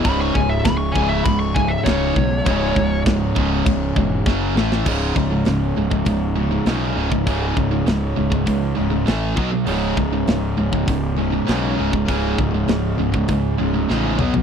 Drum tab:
CC |x---x---x---x---|x---x---x-------|x---------------|----------------|
HH |----------------|----------------|----o---o---o---|o---o---o---o---|
SD |----o-------o---|----o-------o-oo|----o-------o---|----o-------o---|
T2 |----------------|----------------|----------------|----------------|
FT |----------------|----------------|----------------|----------------|
BD |o-o-o-o-o-o-o-o-|o-o-o-o-o-o-o---|o-o----oo------o|o-o----oo-----o-|

CC |----------------|----------------|
HH |o---o---o---o---|o---o---o-------|
SD |----o-------o---|----o-------o---|
T2 |----------------|--------------o-|
FT |----------------|---------------o|
BD |--o----oo------o|o-o----oo-------|